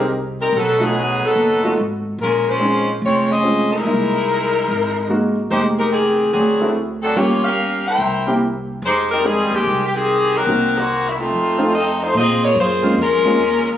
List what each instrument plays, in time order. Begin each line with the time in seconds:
Already playing: upright bass C2, grand piano D#4
0.00 grand piano G4 A#4
0.40 saxophone section G3 C4 D#4 A#4
0.52 upright bass B1, saxophone section F#3 B3 D#4 A4
0.78 grand piano A3 D#4 F4 F#4
0.83 saxophone section F#3 B3 D#4 G#4
1.22 saxophone section F#3 B3 D#4 A4, muted upright bass stroke
1.36 upright bass F#1
1.63 grand piano A3 D#4 F4 F#4
1.77 upright bass G#1
2.18 upright bass A#1, saxophone section G#3 C#4 F4 A#4
2.48 saxophone section G#3 C#4 F4 C5
2.59 grand piano G#3 C4 C#4 D#4
3.02 upright bass F1, saxophone section G#3 C4 F4 C#5
3.31 saxophone section C#4 G#4 C5 D#5
3.43 grand piano G#3 C4 C#4 F4
3.73 saxophone section G#3 D#4 E4 A#4
3.84 upright bass C2, grand piano G#3 A#3 D#4 E4
4.68 upright bass G#1
5.09 grand piano G#3 A#3 D#4 F#4
5.50 upright bass F1, grand piano G#3 A#3 D#4 G4, saxophone section G#3 D#4 G4 C5
5.78 saxophone section G#3 D#4 G4 A#4
5.91 saxophone section D#3 C4 G4 G#4
6.32 upright bass D2, saxophone section F#3 C4 D4 G#4
6.60 grand piano A3 C4 E4 F#4
7.02 saxophone section F#3 C4 D4 A4
7.16 upright bass G1, grand piano A#3 C#4 F4 G4, saxophone section A#3 F4 G4 C#5
7.44 saxophone section C#4 G4 A#4 F5
7.86 saxophone section E4 A#4 C5 G5
7.98 upright bass C2
8.27 grand piano A#3 C4 E4 G4
8.82 upright bass F2, saxophone section G#3 D#4 G4 C5
9.11 saxophone section G3 C4 D#4 A#4
9.24 saxophone section D#3 G3 C4 G#4, grand piano G#3 C4 D#4 G4
9.50 upright bass D#2, saxophone section D#3 G#3 C4 G4
9.64 upright bass C2
9.84 saxophone section G4
9.94 saxophone section D#3 C4 G4 G#4
10.35 saxophone section F#3 C4 D#4 A#4
10.47 upright bass C2, grand piano A#3 C4 D#4 F#4
10.77 saxophone section D#3 A#3 C4 F#4
11.09 saxophone section E4
11.18 saxophone section A3 C4 D#4 F4
11.30 upright bass F2
11.58 grand piano A3 C4 D#4 F4
11.74 saxophone section C4 F4 A4 D#5
12.02 saxophone section A3 D#4 F4 C5
12.14 upright bass A#2, saxophone section C4 F4 G#4 D#5
12.44 saxophone section A#3 F4 G#4 C#5
12.55 upright bass F#2, saxophone section A#3
12.59 saxophone section F4 G#4 C5
12.82 grand piano G#3 A#3 C4 C#4 F4
12.97 upright bass F2, saxophone section G#3 C#4 F4
13.01 saxophone section A#4
13.24 grand piano G#3 A#3 C4 C#4 F4, muted upright bass stroke
13.38 upright bass D#2